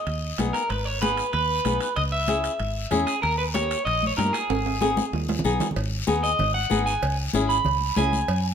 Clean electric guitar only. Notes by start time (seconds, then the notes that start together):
Already playing: D#5
0.53 A#4
0.69 B4
0.85 C#5
1.02 B4
1.33 B4
1.96 D#5
2.12 E5
3.07 G#4
3.22 A#4
3.38 B4
3.54 C#5
3.85 D#5
4.07 C#5
4.17 A#4
4.33 G#4
6.23 D#5
6.54 F#5
6.86 G#5
7.49 B5
7.97 G#5